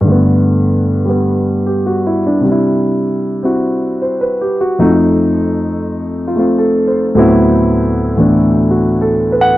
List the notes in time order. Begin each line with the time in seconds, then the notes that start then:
0.01 G2 D3
0.08 A3 B3
1.05 G3 B3
1.66 G4
1.86 F#4
2.07 E4
2.27 D4
2.40 C3 G3
2.48 D4 E4
3.43 C4 E4 F#4
4.02 C5
4.21 B4
4.41 G4
4.61 F#4
4.79 F2 F3 A3 D#4
6.27 F4
6.36 A3 C4 F4
6.58 A4
6.87 C5
7.15 D2 A2 F#3 B3 C4
7.19 E4
8.16 A2 E3 A3 B3 D4
8.71 F#4
9.01 A4
9.32 B4
9.41 F#5